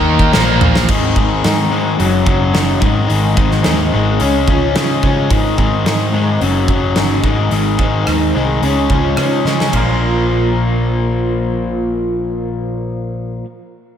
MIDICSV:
0, 0, Header, 1, 5, 480
1, 0, Start_track
1, 0, Tempo, 552995
1, 766, Time_signature, 4, 2, 24, 8
1, 12131, End_track
2, 0, Start_track
2, 0, Title_t, "Clean electric guitar"
2, 0, Program_c, 0, 27
2, 1014, Note_on_c, 0, 60, 54
2, 1255, Note_on_c, 0, 63, 58
2, 1728, Note_off_c, 0, 60, 0
2, 2204, Note_off_c, 0, 63, 0
2, 2207, Note_on_c, 0, 63, 64
2, 2926, Note_on_c, 0, 60, 53
2, 3159, Note_off_c, 0, 63, 0
2, 3163, Note_on_c, 0, 63, 55
2, 3644, Note_off_c, 0, 60, 0
2, 3673, Note_off_c, 0, 63, 0
2, 3887, Note_on_c, 0, 53, 61
2, 4124, Note_on_c, 0, 63, 65
2, 4604, Note_off_c, 0, 53, 0
2, 4835, Note_on_c, 0, 60, 60
2, 5071, Note_off_c, 0, 63, 0
2, 5075, Note_on_c, 0, 63, 57
2, 5558, Note_off_c, 0, 60, 0
2, 6039, Note_off_c, 0, 63, 0
2, 6043, Note_on_c, 0, 63, 68
2, 6282, Note_off_c, 0, 63, 0
2, 6761, Note_on_c, 0, 60, 55
2, 6998, Note_on_c, 0, 63, 54
2, 7480, Note_off_c, 0, 63, 0
2, 7481, Note_off_c, 0, 60, 0
2, 7726, Note_on_c, 0, 53, 58
2, 7964, Note_on_c, 0, 63, 59
2, 8435, Note_off_c, 0, 53, 0
2, 8443, Note_off_c, 0, 63, 0
2, 8461, Note_on_c, 0, 62, 82
2, 8465, Note_on_c, 0, 65, 82
2, 11675, Note_off_c, 0, 62, 0
2, 11677, Note_off_c, 0, 65, 0
2, 12131, End_track
3, 0, Start_track
3, 0, Title_t, "Overdriven electric guitar"
3, 0, Program_c, 1, 29
3, 0, Note_on_c, 1, 51, 94
3, 0, Note_on_c, 1, 58, 89
3, 0, Note_on_c, 1, 63, 97
3, 278, Note_off_c, 1, 51, 0
3, 281, Note_off_c, 1, 58, 0
3, 281, Note_off_c, 1, 63, 0
3, 286, Note_on_c, 1, 46, 82
3, 294, Note_on_c, 1, 53, 93
3, 298, Note_on_c, 1, 58, 93
3, 758, Note_off_c, 1, 46, 0
3, 762, Note_off_c, 1, 53, 0
3, 764, Note_off_c, 1, 58, 0
3, 773, Note_on_c, 1, 44, 81
3, 781, Note_on_c, 1, 51, 93
3, 787, Note_on_c, 1, 56, 101
3, 1003, Note_off_c, 1, 44, 0
3, 1008, Note_off_c, 1, 51, 0
3, 1008, Note_off_c, 1, 56, 0
3, 1013, Note_on_c, 1, 44, 79
3, 1019, Note_on_c, 1, 51, 82
3, 1019, Note_on_c, 1, 56, 81
3, 1236, Note_off_c, 1, 44, 0
3, 1243, Note_off_c, 1, 51, 0
3, 1245, Note_off_c, 1, 56, 0
3, 1246, Note_on_c, 1, 44, 80
3, 1254, Note_on_c, 1, 51, 80
3, 1255, Note_on_c, 1, 56, 72
3, 1469, Note_off_c, 1, 44, 0
3, 1475, Note_off_c, 1, 51, 0
3, 1479, Note_on_c, 1, 44, 88
3, 1481, Note_off_c, 1, 56, 0
3, 1486, Note_on_c, 1, 51, 90
3, 1491, Note_on_c, 1, 56, 92
3, 1707, Note_off_c, 1, 44, 0
3, 1710, Note_off_c, 1, 51, 0
3, 1713, Note_off_c, 1, 56, 0
3, 1720, Note_on_c, 1, 42, 80
3, 1724, Note_on_c, 1, 49, 86
3, 1725, Note_on_c, 1, 54, 92
3, 1945, Note_off_c, 1, 42, 0
3, 1946, Note_off_c, 1, 49, 0
3, 1953, Note_off_c, 1, 54, 0
3, 1955, Note_on_c, 1, 42, 73
3, 1956, Note_on_c, 1, 49, 87
3, 1964, Note_on_c, 1, 54, 91
3, 2180, Note_off_c, 1, 42, 0
3, 2188, Note_off_c, 1, 49, 0
3, 2190, Note_on_c, 1, 42, 76
3, 2195, Note_off_c, 1, 54, 0
3, 2199, Note_on_c, 1, 49, 87
3, 2206, Note_on_c, 1, 54, 94
3, 2422, Note_off_c, 1, 42, 0
3, 2426, Note_off_c, 1, 49, 0
3, 2430, Note_off_c, 1, 54, 0
3, 2431, Note_on_c, 1, 44, 85
3, 2433, Note_on_c, 1, 51, 88
3, 2440, Note_on_c, 1, 56, 88
3, 2656, Note_off_c, 1, 44, 0
3, 2662, Note_off_c, 1, 51, 0
3, 2666, Note_off_c, 1, 56, 0
3, 2667, Note_on_c, 1, 44, 82
3, 2672, Note_on_c, 1, 51, 82
3, 2677, Note_on_c, 1, 56, 93
3, 2905, Note_off_c, 1, 44, 0
3, 2910, Note_off_c, 1, 51, 0
3, 2912, Note_off_c, 1, 56, 0
3, 2915, Note_on_c, 1, 44, 76
3, 2920, Note_on_c, 1, 51, 76
3, 2923, Note_on_c, 1, 56, 81
3, 3145, Note_off_c, 1, 44, 0
3, 3149, Note_off_c, 1, 51, 0
3, 3155, Note_on_c, 1, 44, 73
3, 3158, Note_off_c, 1, 56, 0
3, 3159, Note_on_c, 1, 51, 71
3, 3168, Note_on_c, 1, 56, 78
3, 3394, Note_off_c, 1, 44, 0
3, 3398, Note_off_c, 1, 51, 0
3, 3404, Note_off_c, 1, 56, 0
3, 3405, Note_on_c, 1, 44, 84
3, 3408, Note_on_c, 1, 51, 84
3, 3414, Note_on_c, 1, 56, 97
3, 3629, Note_off_c, 1, 44, 0
3, 3630, Note_off_c, 1, 51, 0
3, 3633, Note_off_c, 1, 56, 0
3, 3645, Note_on_c, 1, 49, 83
3, 3650, Note_on_c, 1, 56, 79
3, 3656, Note_on_c, 1, 61, 94
3, 3886, Note_off_c, 1, 49, 0
3, 3889, Note_off_c, 1, 56, 0
3, 3896, Note_on_c, 1, 49, 71
3, 3897, Note_off_c, 1, 61, 0
3, 3899, Note_on_c, 1, 56, 72
3, 3908, Note_on_c, 1, 61, 82
3, 4116, Note_off_c, 1, 49, 0
3, 4124, Note_off_c, 1, 56, 0
3, 4126, Note_on_c, 1, 49, 75
3, 4129, Note_off_c, 1, 61, 0
3, 4135, Note_on_c, 1, 56, 87
3, 4139, Note_on_c, 1, 61, 80
3, 4359, Note_off_c, 1, 49, 0
3, 4361, Note_off_c, 1, 56, 0
3, 4368, Note_off_c, 1, 61, 0
3, 4369, Note_on_c, 1, 49, 67
3, 4372, Note_on_c, 1, 56, 69
3, 4379, Note_on_c, 1, 61, 74
3, 4591, Note_off_c, 1, 49, 0
3, 4592, Note_off_c, 1, 56, 0
3, 4596, Note_off_c, 1, 61, 0
3, 4602, Note_on_c, 1, 44, 80
3, 4608, Note_on_c, 1, 51, 83
3, 4612, Note_on_c, 1, 56, 87
3, 4832, Note_off_c, 1, 44, 0
3, 4840, Note_off_c, 1, 51, 0
3, 4842, Note_on_c, 1, 44, 75
3, 4844, Note_off_c, 1, 56, 0
3, 4850, Note_on_c, 1, 51, 73
3, 4854, Note_on_c, 1, 56, 84
3, 5078, Note_off_c, 1, 44, 0
3, 5086, Note_off_c, 1, 51, 0
3, 5089, Note_on_c, 1, 44, 71
3, 5090, Note_off_c, 1, 56, 0
3, 5096, Note_on_c, 1, 51, 66
3, 5100, Note_on_c, 1, 56, 81
3, 5306, Note_off_c, 1, 44, 0
3, 5315, Note_off_c, 1, 51, 0
3, 5316, Note_on_c, 1, 44, 83
3, 5319, Note_off_c, 1, 56, 0
3, 5326, Note_on_c, 1, 51, 84
3, 5329, Note_on_c, 1, 56, 86
3, 5544, Note_off_c, 1, 44, 0
3, 5549, Note_off_c, 1, 51, 0
3, 5551, Note_off_c, 1, 56, 0
3, 5561, Note_on_c, 1, 42, 86
3, 5570, Note_on_c, 1, 49, 82
3, 5572, Note_on_c, 1, 54, 89
3, 5794, Note_off_c, 1, 42, 0
3, 5797, Note_off_c, 1, 49, 0
3, 5801, Note_off_c, 1, 54, 0
3, 5804, Note_on_c, 1, 42, 73
3, 5807, Note_on_c, 1, 49, 69
3, 5812, Note_on_c, 1, 54, 89
3, 6027, Note_off_c, 1, 42, 0
3, 6036, Note_off_c, 1, 49, 0
3, 6037, Note_on_c, 1, 42, 75
3, 6038, Note_off_c, 1, 54, 0
3, 6046, Note_on_c, 1, 49, 84
3, 6048, Note_on_c, 1, 54, 90
3, 6265, Note_off_c, 1, 42, 0
3, 6269, Note_off_c, 1, 49, 0
3, 6270, Note_off_c, 1, 54, 0
3, 6286, Note_on_c, 1, 44, 68
3, 6291, Note_on_c, 1, 51, 77
3, 6296, Note_on_c, 1, 56, 82
3, 6511, Note_off_c, 1, 44, 0
3, 6520, Note_off_c, 1, 51, 0
3, 6522, Note_on_c, 1, 44, 75
3, 6523, Note_off_c, 1, 56, 0
3, 6530, Note_on_c, 1, 51, 88
3, 6534, Note_on_c, 1, 56, 79
3, 6750, Note_off_c, 1, 44, 0
3, 6755, Note_off_c, 1, 51, 0
3, 6761, Note_off_c, 1, 56, 0
3, 6761, Note_on_c, 1, 44, 75
3, 6766, Note_on_c, 1, 51, 75
3, 6771, Note_on_c, 1, 56, 76
3, 6998, Note_off_c, 1, 44, 0
3, 6998, Note_off_c, 1, 51, 0
3, 7007, Note_off_c, 1, 56, 0
3, 7009, Note_on_c, 1, 44, 75
3, 7009, Note_on_c, 1, 51, 73
3, 7018, Note_on_c, 1, 56, 78
3, 7237, Note_off_c, 1, 44, 0
3, 7244, Note_off_c, 1, 51, 0
3, 7248, Note_on_c, 1, 44, 82
3, 7251, Note_off_c, 1, 56, 0
3, 7255, Note_on_c, 1, 51, 82
3, 7262, Note_on_c, 1, 56, 85
3, 7470, Note_off_c, 1, 44, 0
3, 7474, Note_off_c, 1, 51, 0
3, 7477, Note_off_c, 1, 56, 0
3, 7491, Note_on_c, 1, 49, 83
3, 7501, Note_on_c, 1, 56, 81
3, 7505, Note_on_c, 1, 61, 86
3, 7720, Note_off_c, 1, 49, 0
3, 7729, Note_off_c, 1, 56, 0
3, 7731, Note_on_c, 1, 49, 65
3, 7732, Note_off_c, 1, 61, 0
3, 7739, Note_on_c, 1, 56, 74
3, 7742, Note_on_c, 1, 61, 83
3, 7955, Note_off_c, 1, 49, 0
3, 7958, Note_off_c, 1, 56, 0
3, 7965, Note_off_c, 1, 61, 0
3, 7966, Note_on_c, 1, 49, 71
3, 7969, Note_on_c, 1, 56, 73
3, 7975, Note_on_c, 1, 61, 81
3, 8195, Note_off_c, 1, 49, 0
3, 8200, Note_off_c, 1, 56, 0
3, 8206, Note_off_c, 1, 61, 0
3, 8206, Note_on_c, 1, 49, 58
3, 8210, Note_on_c, 1, 56, 61
3, 8216, Note_on_c, 1, 61, 67
3, 8430, Note_off_c, 1, 49, 0
3, 8432, Note_off_c, 1, 56, 0
3, 8433, Note_on_c, 1, 46, 69
3, 8435, Note_off_c, 1, 61, 0
3, 8455, Note_on_c, 1, 53, 73
3, 8470, Note_on_c, 1, 58, 85
3, 11661, Note_off_c, 1, 46, 0
3, 11672, Note_off_c, 1, 53, 0
3, 11679, Note_off_c, 1, 58, 0
3, 12131, End_track
4, 0, Start_track
4, 0, Title_t, "Picked electric bass"
4, 0, Program_c, 2, 34
4, 0, Note_on_c, 2, 39, 96
4, 258, Note_off_c, 2, 39, 0
4, 302, Note_on_c, 2, 34, 95
4, 740, Note_off_c, 2, 34, 0
4, 767, Note_on_c, 2, 32, 87
4, 984, Note_off_c, 2, 32, 0
4, 1011, Note_on_c, 2, 32, 76
4, 1226, Note_off_c, 2, 32, 0
4, 1254, Note_on_c, 2, 44, 85
4, 1694, Note_off_c, 2, 44, 0
4, 1732, Note_on_c, 2, 30, 94
4, 1946, Note_off_c, 2, 30, 0
4, 1967, Note_on_c, 2, 30, 81
4, 2183, Note_off_c, 2, 30, 0
4, 2216, Note_on_c, 2, 30, 91
4, 2427, Note_off_c, 2, 30, 0
4, 2446, Note_on_c, 2, 32, 84
4, 2662, Note_off_c, 2, 32, 0
4, 2686, Note_on_c, 2, 32, 86
4, 2902, Note_off_c, 2, 32, 0
4, 2930, Note_on_c, 2, 32, 70
4, 3144, Note_off_c, 2, 32, 0
4, 3175, Note_on_c, 2, 39, 78
4, 3387, Note_off_c, 2, 39, 0
4, 3417, Note_on_c, 2, 32, 77
4, 3627, Note_off_c, 2, 32, 0
4, 3652, Note_on_c, 2, 37, 82
4, 3865, Note_off_c, 2, 37, 0
4, 3884, Note_on_c, 2, 37, 77
4, 4101, Note_off_c, 2, 37, 0
4, 4135, Note_on_c, 2, 49, 89
4, 4346, Note_off_c, 2, 49, 0
4, 4370, Note_on_c, 2, 49, 78
4, 4584, Note_off_c, 2, 49, 0
4, 4609, Note_on_c, 2, 32, 91
4, 4823, Note_off_c, 2, 32, 0
4, 4847, Note_on_c, 2, 32, 76
4, 5062, Note_off_c, 2, 32, 0
4, 5076, Note_on_c, 2, 44, 82
4, 5524, Note_off_c, 2, 44, 0
4, 5566, Note_on_c, 2, 30, 82
4, 5782, Note_off_c, 2, 30, 0
4, 5801, Note_on_c, 2, 30, 81
4, 6019, Note_off_c, 2, 30, 0
4, 6036, Note_on_c, 2, 31, 83
4, 6256, Note_off_c, 2, 31, 0
4, 6279, Note_on_c, 2, 32, 72
4, 6498, Note_off_c, 2, 32, 0
4, 6519, Note_on_c, 2, 32, 82
4, 6738, Note_off_c, 2, 32, 0
4, 6760, Note_on_c, 2, 32, 72
4, 6978, Note_off_c, 2, 32, 0
4, 7006, Note_on_c, 2, 39, 75
4, 7222, Note_off_c, 2, 39, 0
4, 7250, Note_on_c, 2, 36, 80
4, 7464, Note_off_c, 2, 36, 0
4, 7479, Note_on_c, 2, 37, 84
4, 7698, Note_off_c, 2, 37, 0
4, 7727, Note_on_c, 2, 37, 72
4, 7942, Note_off_c, 2, 37, 0
4, 7961, Note_on_c, 2, 49, 76
4, 8179, Note_off_c, 2, 49, 0
4, 8200, Note_on_c, 2, 49, 76
4, 8419, Note_off_c, 2, 49, 0
4, 8444, Note_on_c, 2, 34, 84
4, 11632, Note_off_c, 2, 34, 0
4, 12131, End_track
5, 0, Start_track
5, 0, Title_t, "Drums"
5, 167, Note_on_c, 9, 36, 65
5, 254, Note_off_c, 9, 36, 0
5, 290, Note_on_c, 9, 38, 88
5, 377, Note_off_c, 9, 38, 0
5, 530, Note_on_c, 9, 43, 97
5, 617, Note_off_c, 9, 43, 0
5, 655, Note_on_c, 9, 38, 97
5, 742, Note_off_c, 9, 38, 0
5, 770, Note_on_c, 9, 36, 104
5, 774, Note_on_c, 9, 49, 84
5, 857, Note_off_c, 9, 36, 0
5, 861, Note_off_c, 9, 49, 0
5, 1008, Note_on_c, 9, 36, 78
5, 1094, Note_off_c, 9, 36, 0
5, 1253, Note_on_c, 9, 46, 46
5, 1254, Note_on_c, 9, 38, 100
5, 1339, Note_off_c, 9, 46, 0
5, 1341, Note_off_c, 9, 38, 0
5, 1734, Note_on_c, 9, 46, 43
5, 1821, Note_off_c, 9, 46, 0
5, 1966, Note_on_c, 9, 36, 81
5, 2053, Note_off_c, 9, 36, 0
5, 2209, Note_on_c, 9, 46, 44
5, 2210, Note_on_c, 9, 38, 94
5, 2295, Note_off_c, 9, 46, 0
5, 2297, Note_off_c, 9, 38, 0
5, 2446, Note_on_c, 9, 36, 93
5, 2533, Note_off_c, 9, 36, 0
5, 2689, Note_on_c, 9, 46, 43
5, 2776, Note_off_c, 9, 46, 0
5, 2925, Note_on_c, 9, 36, 81
5, 3012, Note_off_c, 9, 36, 0
5, 3048, Note_on_c, 9, 38, 30
5, 3135, Note_off_c, 9, 38, 0
5, 3161, Note_on_c, 9, 46, 41
5, 3162, Note_on_c, 9, 38, 92
5, 3248, Note_off_c, 9, 46, 0
5, 3249, Note_off_c, 9, 38, 0
5, 3644, Note_on_c, 9, 46, 47
5, 3731, Note_off_c, 9, 46, 0
5, 3885, Note_on_c, 9, 36, 80
5, 3971, Note_off_c, 9, 36, 0
5, 4127, Note_on_c, 9, 46, 52
5, 4129, Note_on_c, 9, 38, 102
5, 4214, Note_off_c, 9, 46, 0
5, 4216, Note_off_c, 9, 38, 0
5, 4366, Note_on_c, 9, 36, 76
5, 4452, Note_off_c, 9, 36, 0
5, 4605, Note_on_c, 9, 36, 91
5, 4605, Note_on_c, 9, 46, 48
5, 4692, Note_off_c, 9, 36, 0
5, 4692, Note_off_c, 9, 46, 0
5, 4845, Note_on_c, 9, 36, 71
5, 4931, Note_off_c, 9, 36, 0
5, 5087, Note_on_c, 9, 46, 46
5, 5088, Note_on_c, 9, 38, 93
5, 5174, Note_off_c, 9, 46, 0
5, 5175, Note_off_c, 9, 38, 0
5, 5567, Note_on_c, 9, 46, 48
5, 5654, Note_off_c, 9, 46, 0
5, 5800, Note_on_c, 9, 36, 77
5, 5887, Note_off_c, 9, 36, 0
5, 6039, Note_on_c, 9, 46, 49
5, 6040, Note_on_c, 9, 38, 99
5, 6125, Note_off_c, 9, 46, 0
5, 6127, Note_off_c, 9, 38, 0
5, 6281, Note_on_c, 9, 36, 81
5, 6367, Note_off_c, 9, 36, 0
5, 6520, Note_on_c, 9, 46, 41
5, 6607, Note_off_c, 9, 46, 0
5, 6760, Note_on_c, 9, 36, 70
5, 6847, Note_off_c, 9, 36, 0
5, 7003, Note_on_c, 9, 46, 39
5, 7004, Note_on_c, 9, 37, 95
5, 7089, Note_off_c, 9, 46, 0
5, 7091, Note_off_c, 9, 37, 0
5, 7489, Note_on_c, 9, 46, 43
5, 7576, Note_off_c, 9, 46, 0
5, 7723, Note_on_c, 9, 36, 72
5, 7810, Note_off_c, 9, 36, 0
5, 7959, Note_on_c, 9, 46, 44
5, 7961, Note_on_c, 9, 37, 102
5, 8046, Note_off_c, 9, 46, 0
5, 8048, Note_off_c, 9, 37, 0
5, 8209, Note_on_c, 9, 38, 43
5, 8296, Note_off_c, 9, 38, 0
5, 8335, Note_on_c, 9, 38, 74
5, 8422, Note_off_c, 9, 38, 0
5, 8446, Note_on_c, 9, 36, 55
5, 8447, Note_on_c, 9, 51, 72
5, 8533, Note_off_c, 9, 36, 0
5, 8534, Note_off_c, 9, 51, 0
5, 12131, End_track
0, 0, End_of_file